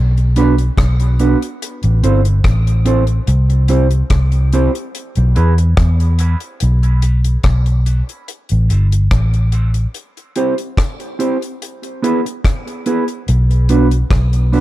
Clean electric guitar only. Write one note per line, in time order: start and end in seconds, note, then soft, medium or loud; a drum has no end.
0.36 0.53 B3 medium
0.36 0.54 D4 medium
0.36 0.54 F#4 medium
0.36 0.54 B4 medium
1.20 1.37 B3 medium
1.20 1.37 D4 medium
1.20 1.37 F#4 medium
1.20 1.37 B4 medium
2.03 2.20 C4 medium
2.03 2.20 E4 medium
2.03 2.21 A4 medium
2.03 2.21 C5 medium
2.26 muted clean electric guitar stroke soft
2.85 3.03 C4 medium
2.85 3.03 E4 medium
2.85 3.03 A4 medium
2.85 3.04 C5 loud
3.69 3.86 C4 medium
3.69 3.86 E4 medium
3.69 3.87 G4 medium
3.69 3.87 C5 medium
4.53 4.70 C4 medium
4.53 4.70 E4 medium
4.53 4.70 G4 loud
4.53 4.71 C5 medium
5.35 5.53 B3 medium
5.35 5.53 E4 medium
5.35 5.53 G#4 medium
5.35 5.54 B4 medium
5.58 muted clean electric guitar stroke medium
6.19 6.37 B3 medium
6.19 6.37 E4 medium
6.19 6.37 G#4 medium
6.19 6.37 B4 medium
7.02 7.19 B3 medium
7.02 7.20 D4 medium
7.02 7.20 F#4 medium
7.02 7.20 B4 medium
7.85 8.03 B3 medium
7.85 8.03 D4 medium
7.85 8.03 F#4 medium
7.85 8.03 B4 medium
8.69 8.86 C4 medium
8.69 8.86 E4 medium
8.69 8.87 A4 medium
8.69 8.87 C5 medium
8.91 muted clean electric guitar stroke medium
9.53 9.70 C4 medium
9.53 9.70 E4 medium
9.53 9.70 A4 medium
9.53 9.70 C5 medium
10.36 10.53 C4 medium
10.36 10.53 E4 medium
10.36 10.53 G4 medium
10.36 10.54 C5 medium
11.19 11.36 C4 medium
11.19 11.36 E4 medium
11.19 11.37 G4 medium
11.19 11.37 C5 medium
12.02 12.20 B3 medium
12.02 12.20 E4 medium
12.02 12.20 G#4 medium
12.02 12.20 B4 medium
12.25 muted clean electric guitar stroke soft
12.86 13.03 B3 medium
12.86 13.03 E4 medium
12.86 13.04 G#4 medium
12.86 13.03 B4 medium
13.69 13.86 B3 medium
13.69 13.87 D4 medium
13.69 13.87 F#4 medium
13.69 13.87 B4 medium
14.52 14.60 B3 medium
14.52 14.60 D4 medium
14.52 14.60 F#4 medium
14.52 14.60 B4 medium